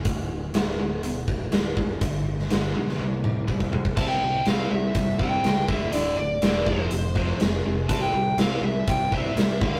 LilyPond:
<<
  \new Staff \with { instrumentName = "Lead electric guitar" } { \time 4/4 \key c \mixolydian \tempo 4 = 122 r1 | r1 | a''16 g''8. f''8 e''4 g''4 e''8 | d''8 d''4 c''4. r4 |
a''16 g''8. f''8 e''8 g''8 e''4 f''8 | }
  \new Staff \with { instrumentName = "Distorted electric guitar" } { \clef bass \time 4/4 \key c \mixolydian <d, a,>4 <d, a,>8 <d, a,>8 <d, b,>4 <d, a,>8 <d, a,>8 | <g, d>4 <g, d>8 <g, d>8 <c g>4 <c g>8 <c g>8 | <c g c'>8 <c g>8 <c g c'>8 <c g>8 <c g>8 <c g c'>8 <c g>8 <d, a, d>8 | <d, a, d>8 <d, a,>8 <d, a, d>8 <f, c f>8 <f, c>8 <f, c f>8 <f, c>8 <f, c>8 |
<c g c'>8 <c g>8 <c g c'>8 <c g>8 <c g>8 <c g c'>8 <c g>8 <d, a, d>8 | }
  \new Staff \with { instrumentName = "Overdriven electric guitar" } { \clef bass \time 4/4 \key c \mixolydian r1 | r1 | <c g c'>8 <c g>8 <c g c'>8 <c g>8 <c g>8 <c g c'>8 <c g>8 <d, a, d>8 | <d, a, d>8 <d, a,>8 <d, a, d>8 <f, c f>8 <f, c>8 <f, c f>8 <f, c>8 <f, c>8 |
<c g c'>8 <c g>8 <c g c'>8 <c g>8 <c g>8 <c g c'>8 <c g>8 <d, a, d>8 | }
  \new Staff \with { instrumentName = "Fingered electric bass" } { \clef bass \time 4/4 \key c \mixolydian d,,4 d,,8 d,,8 d,,8 d,,8 d,,8 d,,8 | g,,4 g,,8 b,,8 c,4 c,4 | c,8 c,8 c,8 c,8 c,4 cis,8 d,,8 | d,,8 d,,8 e,,8 f,,8 f,,4 f,,8 f,,8 |
c,8 c,8 c,8 c,8 c,4 c,8 d,,8 | }
  \new DrumStaff \with { instrumentName = "Drums" } \drummode { \time 4/4 <hh bd>4 <hh sn>4 hh8 bd8 <hh sn>8 bd8 | <hh bd>8. sn16 <hh sn>8. sn16 tommh8 toml8 bd16 bd16 tomfh16 bd16 | <cymc bd>4 <hh sn>4 <hh bd>8 bd8 <hh sn>8 bd8 | hh4 <hh sn>8 bd8 hh8 bd8 <hh sn>4 |
<hh bd>4 <hh sn>4 <hh bd>8 bd8 <hh sn>8 bd16 sn16 | }
>>